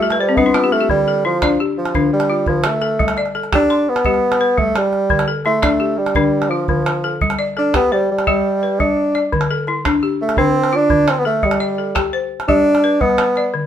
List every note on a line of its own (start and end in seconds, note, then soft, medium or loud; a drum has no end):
0.00 0.20 G3 medium
0.00 0.20 A3 medium
0.00 0.18 A4 medium
0.10 0.27 B4 medium
0.10 calabash click soft
0.19 0.38 G3 medium
0.19 0.36 C5 medium
0.29 0.45 C4 medium
0.36 0.72 G3 medium
0.36 0.74 B3 loud
0.36 0.53 D4 medium
0.36 calabash thump medium
0.46 0.62 E4 medium
0.54 0.70 F4 medium
0.54 calabash click medium
0.64 0.79 G4 medium
0.72 0.90 A3 loud
0.72 0.88 A4 medium
0.72 calabash click soft
0.81 0.97 G4 medium
0.89 1.25 D3 medium
0.89 1.22 G3 loud
0.89 calabash thump medium
1.08 1.60 A4 medium
1.24 1.58 F3 medium
1.24 1.77 E4 medium
1.24 calabash click soft
1.42 1.77 D4 medium
1.42 1.95 D5 medium
1.42 calabash thump medium
1.42 calabash click medium
1.60 2.12 G4 medium
1.78 2.10 F3 medium
1.85 calabash click soft
1.95 2.30 D3 medium
1.95 2.47 D4 medium
1.95 calabash thump medium
2.13 2.45 G3 medium
2.20 calabash click medium
2.30 2.82 F4 medium
2.46 2.82 D3 medium
2.46 2.68 F3 medium
2.46 calabash thump medium
2.64 3.18 A3 medium
2.64 calabash click medium
2.81 3.17 A4 medium
2.81 calabash click soft
2.99 3.35 G3 medium
2.99 calabash thump medium
2.99 calabash click soft
3.08 calabash click medium
3.17 3.70 D5 medium
3.17 calabash click soft
3.26 calabash click soft
3.35 3.88 A4 medium
3.35 calabash click soft
3.44 calabash click soft
3.53 3.91 D4 loud
3.53 3.88 G4 medium
3.53 4.05 G5 medium
3.53 calabash thump medium
3.53 calabash click medium
3.70 4.23 C6 medium
3.70 calabash click soft
3.89 4.60 B3 medium
3.96 calabash click medium
4.05 4.41 G3 medium
4.05 4.58 G4 medium
4.05 calabash thump medium
4.14 calabash click soft
4.32 calabash click medium
4.41 4.93 B4 medium
4.41 calabash click soft
4.58 4.93 G3 medium
4.58 4.78 A3 medium
4.58 calabash thump medium
4.75 5.29 G3 medium
4.75 calabash click medium
4.93 calabash click soft
5.10 5.46 D3 medium
5.10 calabash thump medium
5.19 calabash click medium
5.28 5.81 A4 medium
5.45 5.99 A3 medium
5.45 5.98 E4 medium
5.45 calabash click soft
5.62 5.98 D4 medium
5.62 6.16 D5 medium
5.62 calabash thump medium
5.62 calabash click medium
5.80 6.33 G4 medium
5.98 6.51 G3 medium
6.06 calabash click soft
6.15 6.51 D3 medium
6.15 6.69 D4 medium
6.15 calabash thump medium
6.42 calabash click soft
6.50 6.68 F3 medium
6.50 7.04 F4 medium
6.68 7.04 D3 medium
6.68 7.18 F3 medium
6.68 calabash thump medium
6.86 calabash click medium
7.04 7.39 A4 medium
7.04 calabash click soft
7.21 7.57 G3 medium
7.21 calabash thump medium
7.30 calabash click medium
7.39 7.91 D5 medium
7.57 7.74 D4 medium
7.57 8.09 A4 medium
7.57 calabash click soft
7.74 7.94 B3 loud
7.74 8.09 G4 medium
7.74 8.27 G5 medium
7.74 calabash thump medium
7.74 calabash click medium
7.92 8.09 G3 medium
7.92 8.45 C5 medium
8.11 8.81 G3 medium
8.19 calabash click soft
8.27 8.62 G3 medium
8.27 8.80 G4 medium
8.27 calabash thump medium
8.63 9.15 B4 medium
8.80 9.15 G3 medium
8.80 9.32 D4 loud
8.80 calabash thump medium
9.15 9.50 D5 medium
9.15 calabash click soft
9.32 9.67 D3 medium
9.32 calabash thump medium
9.41 calabash click medium
9.51 10.03 A4 medium
9.67 10.20 E4 medium
9.67 calabash click soft
9.85 10.20 D4 medium
9.85 calabash thump medium
9.85 calabash click medium
10.03 10.55 G4 medium
10.22 10.37 A3 medium
10.29 calabash click soft
10.37 10.73 D3 medium
10.37 10.77 C4 loud
10.37 10.91 D4 medium
10.37 calabash thump medium
10.64 calabash click soft
10.73 11.11 D4 loud
10.73 11.25 F4 medium
10.90 11.26 D3 medium
10.90 calabash thump medium
11.08 11.20 C4 medium
11.08 calabash click medium
11.19 11.26 B3 medium
11.25 11.46 A3 medium
11.25 11.61 A4 medium
11.25 calabash click soft
11.43 11.78 G3 medium
11.43 11.97 G3 medium
11.43 calabash thump medium
11.51 calabash click medium
11.60 12.13 D5 medium
11.60 calabash click soft
11.78 12.31 A4 medium
11.95 12.31 G4 medium
11.95 12.48 G5 medium
11.95 calabash thump medium
11.95 calabash click medium
12.13 12.66 C5 medium
12.40 calabash click soft
12.48 12.84 G3 medium
12.48 13.02 D4 loud
12.48 13.01 G4 medium
12.48 calabash thump medium
12.75 calabash click soft
12.84 13.37 B4 medium
13.01 13.37 G3 medium
13.01 13.54 B3 medium
13.01 calabash thump medium
13.01 calabash click soft
13.10 calabash click soft
13.18 calabash click medium
13.36 13.66 D5 medium
13.36 calabash click soft
13.54 13.66 D3 medium